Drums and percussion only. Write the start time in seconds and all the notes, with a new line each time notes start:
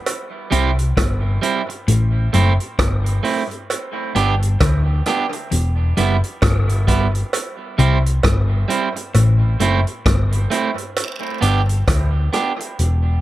0.06 closed hi-hat, cowbell
0.52 closed hi-hat
0.79 closed hi-hat
0.97 kick, cross-stick, closed hi-hat, cowbell
1.43 closed hi-hat
1.70 closed hi-hat
1.88 closed hi-hat
2.34 closed hi-hat
2.60 closed hi-hat
2.79 kick, cross-stick, closed hi-hat, cowbell
3.06 closed hi-hat
3.24 open hi-hat
3.51 closed hi-hat
3.70 closed hi-hat, cowbell
4.16 closed hi-hat
4.42 closed hi-hat
4.60 kick, cross-stick, closed hi-hat, cowbell
5.06 cross-stick, closed hi-hat
5.33 closed hi-hat
5.51 closed hi-hat
5.97 closed hi-hat
6.24 closed hi-hat
6.42 kick, cross-stick, closed hi-hat, cowbell
6.69 closed hi-hat
6.88 kick, closed hi-hat
7.15 closed hi-hat
7.33 closed hi-hat, cowbell
7.79 closed hi-hat
8.06 closed hi-hat
8.23 kick, cross-stick, closed hi-hat, cowbell
8.70 closed hi-hat
8.96 closed hi-hat
9.14 closed hi-hat, cowbell
9.60 closed hi-hat
9.87 closed hi-hat
10.06 kick, cross-stick, closed hi-hat, cowbell
10.32 closed hi-hat
10.51 closed hi-hat
10.78 closed hi-hat
10.97 closed hi-hat, cowbell, vibraslap
11.42 closed hi-hat
11.69 closed hi-hat
11.88 kick, cross-stick, closed hi-hat, cowbell
12.33 cross-stick, closed hi-hat
12.60 closed hi-hat
12.79 closed hi-hat